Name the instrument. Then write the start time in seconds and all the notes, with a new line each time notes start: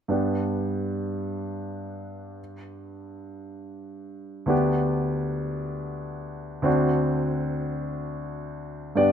grand piano
0.08 G2 B3 D4 G4
4.46 D2 B3 D4 G4
6.62 D2 C4 D4 F#4
8.95 G2 B3 D4 G4 D5